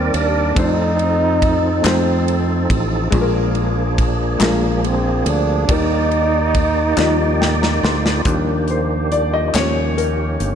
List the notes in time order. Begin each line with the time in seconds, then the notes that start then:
Already playing: D#3 G3 C4 D4 D#4 G4 A#4 D5
0.14 D#2 D4, ride
0.55 F2 F3 A3 C4 D#4 F4 A4, kick, ride
0.59 D#4 C5
0.99 ride
1.42 kick, ride
1.82 F2 A3 D#4 F4 C5, clap, ride
1.87 C4, snare
2.28 ride
2.70 A1, kick, ride
3.10 A#1 A#2 F3 G#3 A#3 D4 F4 G#4, kick, ride
3.21 A#4
3.55 ride
3.98 kick, ride
4.38 A#1 G#3 D4 F4 G#4, clap, ride
4.43 A#3, snare
4.84 C4, ride
5.26 D2 D4, ride
5.67 D#2 D#3 G3 A#3 D#4 G4 A#4 D5, kick, ride
5.73 D#4
6.11 ride
6.55 kick, ride
6.95 D#2 F3 D#4 F4 D5, snare, clap
7.02 G3
7.41 G5, snare
7.62 A#5, snare
7.83 D2 C6, snare
8.06 snare
8.25 D#2 D#3 F3 G3 A#3 D4 G4, kick, closed hi-hat
8.68 C5, closed hi-hat
9.12 D5, closed hi-hat
9.34 D#5
9.48 D#5
9.54 D#2 D#3 F3 G3 A#3 C#4 G4 C#5, snare, clap, closed hi-hat
9.97 A#4, closed hi-hat
10.40 G1, closed hi-hat